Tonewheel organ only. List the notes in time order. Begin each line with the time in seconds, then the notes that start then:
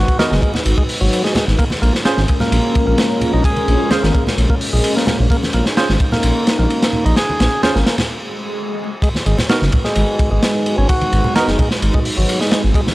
Already playing: F#4
0.19 D#4
0.31 G#3
0.42 G#3
0.78 G#3
1.01 F#3
1.24 G#3
1.35 G#3
1.59 A#3
1.82 A#3
2.40 A#3
2.87 A#3
3.33 D#4
3.45 G#4
3.91 F4
4.03 A#3
4.14 A#3
4.50 A#3
4.73 G#3
4.96 A#3
5.07 A#3
5.31 A#3
5.54 A#3
6.12 A#3
6.59 A#3
7.06 D#4
7.17 G#4
7.63 F4
7.75 A#3
7.86 A#3
9.03 G#3
9.26 G#3
9.85 G#3
10.31 G#3
10.78 C#4
10.89 F#4
11.36 D#4
11.48 G#3
11.59 G#3
11.94 G#3
12.17 F#3
12.41 G#3
12.52 G#3
12.75 G#3